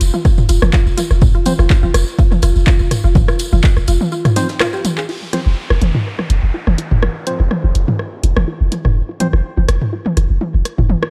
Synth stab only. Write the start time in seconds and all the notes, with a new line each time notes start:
1.46 F3 C4 C5
4.36 F3 C4 C5
5.33 F3 C4 C5
7.27 F3 C4 C5
9.20 F3 C4 C5